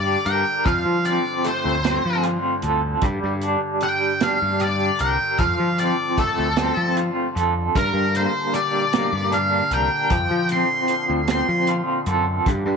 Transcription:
Already playing: picked electric bass G2, synth drone G2 D3, clean electric guitar G3 D4 G4, lead electric guitar D5
0.25 picked electric bass G2, clean electric guitar A#4, lead electric guitar G5, closed hi-hat
0.65 picked electric bass F2, clean electric guitar F3, lead electric guitar F5, kick, closed hi-hat
0.85 picked electric bass F3
1.05 clean electric guitar C4, lead electric guitar D5, closed hi-hat
1.44 clean electric guitar A3, lead electric guitar C5, closed hi-hat
1.65 picked electric bass D2
1.84 clean electric guitar C4, snare, closed hi-hat
2.05 picked electric bass F3
2.23 clean electric guitar F4, closed hi-hat
2.62 picked electric bass D2, clean electric guitar A4, closed hi-hat
3.02 picked electric bass G2, clean electric guitar G3, kick, closed hi-hat
3.24 picked electric bass G2
3.41 clean electric guitar D4, closed hi-hat
3.81 clean electric guitar G3, lead electric guitar G5, closed hi-hat
4.20 clean electric guitar D4, lead electric guitar F5, snare, closed hi-hat
4.42 picked electric bass G2
4.60 clean electric guitar G4, lead electric guitar D5, closed hi-hat
4.99 picked electric bass C2, clean electric guitar A#4, lead electric guitar G5, closed hi-hat
5.38 picked electric bass F2, clean electric guitar F3, lead electric guitar F5, kick, closed hi-hat
5.60 picked electric bass F3
5.78 clean electric guitar C4, lead electric guitar D5, closed hi-hat
6.18 clean electric guitar A3, lead electric guitar A4, kick, closed hi-hat
6.39 picked electric bass D2
6.56 clean electric guitar C4, snare, closed hi-hat
6.77 picked electric bass F3
6.97 clean electric guitar F4, closed hi-hat
7.35 picked electric bass F2, clean electric guitar A4, closed hi-hat
7.75 clean electric guitar G2, picked electric bass G2, synth drone A#2 D3, lead electric guitar A#4, kick, closed hi-hat
7.94 picked electric bass G2
8.14 clean electric guitar A#3, lead electric guitar C5, closed hi-hat
8.54 clean electric guitar G3, lead electric guitar D5, closed hi-hat
8.93 clean electric guitar A#3, snare, closed hi-hat
9.13 picked electric bass G2
9.32 clean electric guitar D4, lead electric guitar F5, closed hi-hat
9.71 picked electric bass C2, clean electric guitar A#4, lead electric guitar G5, closed hi-hat
10.10 picked electric bass F2, clean electric guitar F3, kick, closed hi-hat
10.31 picked electric bass F3
10.49 clean electric guitar C4, lead electric guitar C6, closed hi-hat
10.88 clean electric guitar F3, closed hi-hat
11.10 picked electric bass D2
11.28 clean electric guitar C4, lead electric guitar C6, snare, closed hi-hat
11.49 picked electric bass F3
11.67 clean electric guitar F4, closed hi-hat
12.06 picked electric bass F#2, clean electric guitar A4, closed hi-hat
12.46 picked electric bass G2, clean electric guitar G2, kick, closed hi-hat
12.66 picked electric bass G2

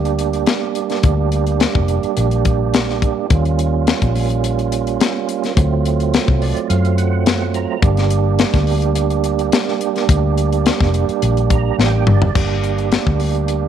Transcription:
Already playing: fingered electric bass D2, tonewheel organ G3 A#3 D4 G4
0.05 closed hi-hat
0.19 closed hi-hat
0.33 closed hi-hat
0.46 snare, closed hi-hat
0.75 closed hi-hat
0.90 snare, closed hi-hat
1.03 fingered electric bass D2, kick, closed hi-hat
1.32 closed hi-hat
1.47 closed hi-hat
1.60 snare, closed hi-hat
1.75 fingered electric bass F1, kick
1.88 closed hi-hat
2.03 closed hi-hat
2.17 fingered electric bass A#1, closed hi-hat
2.31 closed hi-hat
2.45 kick, closed hi-hat
2.74 snare, closed hi-hat
2.89 snare
3.02 kick, closed hi-hat
3.28 fingered electric bass D#2, tonewheel organ G3 A#3 C#4, kick, closed hi-hat
3.33 tonewheel organ F4
3.45 closed hi-hat
3.59 closed hi-hat
3.87 snare, closed hi-hat
4.02 fingered electric bass A#1, kick, closed hi-hat
4.15 open hi-hat
4.30 closed hi-hat
4.44 closed hi-hat
4.59 closed hi-hat
4.72 closed hi-hat
4.87 closed hi-hat
5.01 snare, closed hi-hat
5.29 closed hi-hat
5.44 snare, closed hi-hat
5.55 fingered electric bass D2, tonewheel organ F#3 A3 C4 F4, kick, closed hi-hat
5.85 closed hi-hat
6.00 closed hi-hat
6.14 snare, closed hi-hat
6.28 fingered electric bass C2, kick
6.42 tonewheel organ D5, open hi-hat
6.57 closed hi-hat
6.69 fingered electric bass F#2, tonewheel organ F5, closed hi-hat
6.85 closed hi-hat
6.98 tonewheel organ F#5, closed hi-hat
7.26 tonewheel organ F#5, snare, closed hi-hat
7.54 tonewheel organ A#5, closed hi-hat
7.80 fingered electric bass G1, tonewheel organ G3 A#3 D4 G4, kick, closed hi-hat
7.97 snare, closed hi-hat
8.10 closed hi-hat
8.39 snare, closed hi-hat
8.54 fingered electric bass D2, kick, snare, closed hi-hat
8.67 open hi-hat
8.82 closed hi-hat
8.95 closed hi-hat
9.10 closed hi-hat
9.24 closed hi-hat
9.39 closed hi-hat
9.52 snare, closed hi-hat
9.68 snare
9.81 closed hi-hat
9.96 snare, closed hi-hat
10.09 fingered electric bass D2, kick, closed hi-hat
10.38 closed hi-hat
10.52 closed hi-hat
10.66 snare, closed hi-hat
10.81 fingered electric bass F1, kick, snare
10.94 closed hi-hat
11.09 closed hi-hat
11.22 fingered electric bass A#1, closed hi-hat
11.37 closed hi-hat
11.50 tonewheel organ A#5, kick, closed hi-hat
11.78 fingered electric bass A1, tonewheel organ G5, snare
12.07 fingered electric bass G1, tonewheel organ D5, mid tom
12.22 floor tom
12.33 fingered electric bass G1, tonewheel organ G3 A#3 D4 G4, kick, crash
12.63 closed hi-hat
12.78 closed hi-hat
12.92 snare, closed hi-hat
13.07 fingered electric bass D2, kick
13.20 open hi-hat
13.35 closed hi-hat
13.48 closed hi-hat

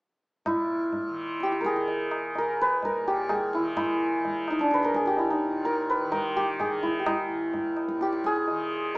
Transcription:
0.45 tanpura A#2, santur E4, tabla na, tabla ge
0.93 tabla tin, tabla ge
1.08 tanpura D#3
1.40 santur G4, tabla te
1.52 tabla te
1.61 santur A#4, tabla ke
1.66 tanpura D#3, santur G#4
1.76 tabla te
1.88 tabla tin
2.11 tabla na
2.34 tanpura D#2, tabla tin
2.38 santur A#4
2.61 santur B4
2.83 santur A#4, tabla tin, tabla ge
2.95 tanpura A#2
3.08 santur G4
3.29 santur G#4, tabla na, tabla ge
3.53 tanpura D#3, santur E4, tabla te
3.77 santur E4, tabla na, tabla ge
4.20 tanpura D#3
4.25 tabla tin, tabla ge
4.48 santur D#4, tabla na
4.59 santur D4, tabla ke
4.71 santur B4, tabla te
4.80 tanpura D#2, santur A#4, tabla te
4.95 santur G#4, tabla ke
5.06 santur G4, tabla te
5.17 santur E4, tabla tin
5.30 santur D#4
5.42 tanpura A#2
5.65 santur A#4, tabla tin
5.90 santur B4
6.05 tanpura D#3
6.12 santur A#4, tabla na, tabla ge
6.36 santur G4, tabla ge
6.60 santur G#4, tabla na, tabla ge
6.66 tanpura D#3
6.83 santur E4, tabla ge
7.00 santur G4
7.06 santur E4, tabla na, tabla ge
7.27 tanpura D#2
7.54 tabla tin, tabla ge
7.77 tabla na
7.88 tanpura A#2, tabla ke
8.01 santur G4, tabla te
8.13 tabla te
8.24 santur G#4, tabla ke
8.36 tabla te
8.48 tanpura D#3, tabla tin
8.95 tabla tin

